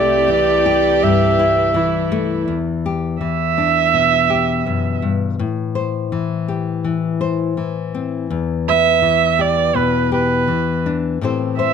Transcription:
Already playing: C2 C3 A3 E4 G4 A4 D5
0.28 E3
0.32 D5
0.66 G4
1.02 G2 E5
1.39 E4
1.74 E3 E4
2.12 A3
2.48 E2
2.86 G4
3.21 E3 E5
3.58 D4
3.94 B2
4.30 G4
4.66 F#2
5.02 G2
5.39 A2
5.75 C5
6.12 E3
6.48 G4
6.84 E3
7.21 C5
7.57 E3
7.94 C4
8.30 E2
8.69 B4 E5
9.02 E3
9.39 G4 D5
9.75 B2 B4
10.12 G4 B4
10.48 E3
10.86 D4
11.21 A2 E3 C4 G4 C5
11.59 C5 E5

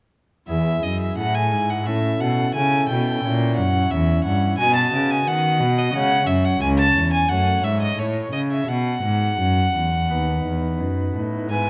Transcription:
0.48 E2 B3 E4 G#4 E5
0.83 F#2 D#5
1.01 E5
1.18 A2 F#5
1.34 G#5
1.52 G#2
1.70 F#5
1.86 A2 C#4 E4 A4 E5
2.20 B2 F#5
2.54 C#3 G#5
2.89 B2 G5
3.23 A#2 C#4 E4 C#5
3.56 F#2 F#5
3.91 E2 E5
4.24 G2 F#5
4.58 B2 B3 F#4 D#5 G#5
4.76 A5
4.93 C#3
5.11 G#5
5.25 D#3 F#5
5.60 B2
5.78 D#5
5.93 C#3 G#3 C#4 C#5 F#5
6.26 F#2 E5
6.44 F#5
6.61 C#2 G#5
6.78 A5
6.95 E2
7.13 G#5
7.29 F#2 A3 C#4 C#5 F#5
7.63 G#2 E5
7.82 D#5
7.98 A2 C#5
8.32 C#3 D#5
8.51 E5
8.67 B2 F#5
9.03 G#2
9.39 F#2
9.74 E2
10.09 D#2 B3 D#4 B4
10.45 E2
10.80 F#2
11.15 A2
11.50 G#2 B3 E4 B4 G#5

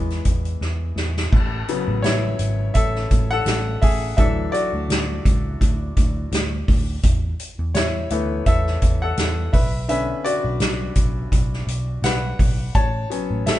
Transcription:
Already playing: E2 E3 G#3 B3 G#4 E5
0.10 snare, closed hi-hat
0.25 E2, kick, closed hi-hat
0.45 closed hi-hat
0.61 E2, snare
0.96 E2, snare
1.16 snare
1.32 A1, kick, crash
1.68 C#3 F#3 B3, closed hi-hat
1.88 A1
2.02 A1 E4 C#5, snare, closed hi-hat
2.39 G#1, closed hi-hat
2.74 A1 A4 E5, kick, closed hi-hat
2.95 snare
3.11 A1, kick, closed hi-hat
3.31 A4 F#5
3.46 A1, snare, closed hi-hat
3.82 A1 G#4 E5, kick, open hi-hat
4.17 D2 E3 F#3 D4 A4 E5, kick, closed hi-hat
4.52 F#4 D5, closed hi-hat
4.73 D2
4.88 D2, snare, closed hi-hat
5.25 C#2, kick, closed hi-hat
5.61 D2, kick, closed hi-hat
5.97 D2, kick, closed hi-hat
6.32 D2, snare, closed hi-hat
6.68 D2, kick, open hi-hat
7.03 E2, kick, closed hi-hat
7.39 closed hi-hat
7.59 E2
7.75 E2 E4 C#5, snare, closed hi-hat
8.10 D2 E3 A3 B3, closed hi-hat
8.46 E2 A4 E5, kick, closed hi-hat
8.66 snare
8.82 E2, kick, closed hi-hat
9.02 A4 F#5
9.17 E2, snare, closed hi-hat
9.53 B1 B4 E5, kick, open hi-hat
9.88 D3 B3 C#4 B4 E5, closed hi-hat
10.24 F#4 D5, closed hi-hat
10.45 B1
10.60 B1, snare, closed hi-hat
10.95 B1, kick, closed hi-hat
11.32 B1, kick, closed hi-hat
11.53 snare
11.67 B1, closed hi-hat
12.02 B1 B4 F#5, snare, closed hi-hat
12.39 B1, kick, open hi-hat
12.75 A1 C#5 A5, kick, closed hi-hat
13.10 F#3 B3 C#4, closed hi-hat
13.31 A1
13.46 A1 A4 E5, snare, closed hi-hat

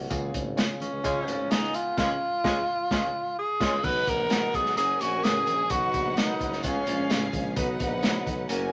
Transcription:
Already playing: A#3 F#4
0.10 C#2 C#3 F4 G#4 C#5, kick, closed hi-hat, tambourine, muted conga, low conga
0.34 G#1, kick, closed hi-hat, tambourine, high conga
0.45 high conga
0.57 F4 G#4 C#5, snare, closed hi-hat, tambourine, muted conga
0.69 high conga
0.80 C#2 C#4, closed hi-hat, tambourine, muted conga, low conga
0.92 C#2
1.03 C#3 F3 G#3 C#4 F4 G#4 C#5, kick, closed hi-hat, tambourine, muted conga, high conga
1.27 G#1 G#3 F4, closed hi-hat, tambourine, muted conga, high conga
1.50 C#2 B3 D#4 F4 G#4 D#5, snare, closed hi-hat, tambourine, high conga
1.64 snare
1.73 F4, closed hi-hat, tambourine, muted conga
1.97 C#2 C#3 G#3 F4 G#4 C#5, kick, snare, crash
2.44 C#2 G#3 F4 G#4 C#5, kick, snare
2.91 C#2 G#3 F4 G#4 C#5, kick, snare
3.39 G#4
3.60 C#2 G#3 F4 G#4 C#5, kick, snare, crash
3.83 B1 B3 D#4 F#4 B4 F#5, kick, crash, tambourine, muted conga, low conga
4.06 A#1 A#4, kick, closed hi-hat, tambourine, high conga
4.18 high conga
4.29 A#3 D#4 F#4 G#4, snare, closed hi-hat, tambourine
4.42 high conga
4.53 B1 B3 G#4, kick, closed hi-hat, tambourine, low conga
4.66 snare
4.76 F#1 C#4 F#4 G#4 A#4 G#5, closed hi-hat, tambourine, muted conga, high conga
4.99 A#1 F#4, closed hi-hat, tambourine, high conga
5.23 A1 C#4 F#4 G#4 A#4, snare, closed hi-hat, tambourine, muted conga, high conga
5.46 A#1, closed hi-hat, tambourine, low conga
5.70 B1 B2 D#4 F#4 B4 F#5, kick, closed hi-hat, tambourine, muted conga, low conga
5.93 A#1, kick, closed hi-hat, tambourine, muted conga, high conga
6.05 high conga
6.17 B1 D#4 F#4 A#4, snare, closed hi-hat, tambourine
6.28 high conga
6.39 F#1 C#4 A#4, kick, closed hi-hat, tambourine, muted conga, low conga
6.53 snare
6.63 C#2 C#3 B3 C#4 F4 G#4 C#5 F5, kick, closed hi-hat, tambourine, muted conga, high conga
6.86 A#1 G#3 F4, closed hi-hat, tambourine, muted conga, high conga
7.10 A1 F4 G#4 C#5, snare, closed hi-hat, tambourine, muted conga, high conga
7.32 A#1, kick, closed hi-hat, tambourine, muted conga, low conga
7.55 B1 B3 D#4 F#4 B4 F#5, kick, closed hi-hat, tambourine, muted conga, low conga
7.79 A#1, kick, closed hi-hat, tambourine, high conga
7.91 high conga
8.02 D#4 F#4 C#5, snare, closed hi-hat, tambourine
8.15 high conga
8.26 B1, kick, closed hi-hat, tambourine, muted conga, low conga
8.48 F#1 A#3 C#4 F#4 A#4 G#5, closed hi-hat, tambourine, muted conga, high conga

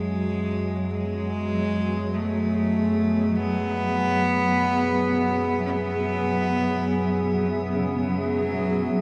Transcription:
Already playing: F#2 B2 F#3 G#3 B3 F#4 G#4 C#5
0.94 G#3
1.76 E5
2.14 A3
3.36 B3
5.66 C#4
5.71 B3
7.73 C#3
8.07 F#3

